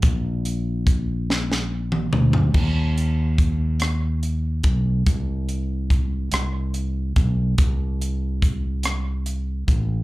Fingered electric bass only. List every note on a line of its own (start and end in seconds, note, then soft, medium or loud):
0.03 2.09 A#1 medium
2.13 2.52 D2 medium
2.54 4.60 D#2 medium
4.64 5.03 B1 medium
5.07 6.29 C2 medium
6.33 7.13 C2 medium
7.16 7.55 B1 medium
7.58 9.64 C2 medium
9.68 10.03 A1 medium